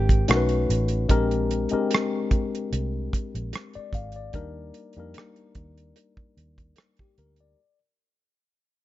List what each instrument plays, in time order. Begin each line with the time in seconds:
Already playing: fingered electric bass G#1, tine electric piano G#3 C4 D4 G4 A#4 C5, hollow-body jazz guitar G4
0.09 kick, closed hi-hat
0.28 fingered electric bass B1, tine electric piano A3 C#4 D#4 F#4 A#4, cross-stick, closed hi-hat
0.36 tine electric piano B4
0.49 closed hi-hat
0.70 fingered electric bass A1, closed hi-hat
0.88 closed hi-hat
1.09 fingered electric bass A#1, tine electric piano G#3 C4 D4 G4 A#4, kick, closed hi-hat
1.31 closed hi-hat
1.51 closed hi-hat
1.69 tine electric piano G#3 C4 D4 G4, muted fingered electric bass stroke, closed hi-hat
1.73 tine electric piano A#4
1.91 cross-stick, closed hi-hat
2.31 kick, closed hi-hat
2.55 closed hi-hat
2.72 fingered electric bass C2, closed hi-hat
3.13 kick, closed hi-hat
3.35 fingered electric bass A#1, closed hi-hat
3.53 cross-stick, closed hi-hat
3.73 tine electric piano D5, muted fingered electric bass stroke, closed hi-hat
3.93 fingered electric bass G#1, tine electric piano F5, kick, closed hi-hat
4.12 closed hi-hat
4.16 tine electric piano D5
4.33 fingered electric bass D#2, tine electric piano G3 A#3 D4 D#4 A#4, kick, closed hi-hat
4.74 closed hi-hat
4.93 fingered electric bass F2, tine electric piano G3, closed hi-hat
4.98 tine electric piano A#3 D4 D#4 A#4
5.14 cross-stick, closed hi-hat
5.36 closed hi-hat
5.55 fingered electric bass D#2, kick, closed hi-hat
5.78 closed hi-hat
5.96 closed hi-hat
6.17 muted fingered electric bass stroke, kick
6.37 fingered electric bass D#2, closed hi-hat
6.58 kick, closed hi-hat
6.76 cross-stick, closed hi-hat
6.97 tine electric piano G4, kick, closed hi-hat
7.18 fingered electric bass D2, tine electric piano A#4, closed hi-hat
7.36 closed hi-hat
7.41 tine electric piano D5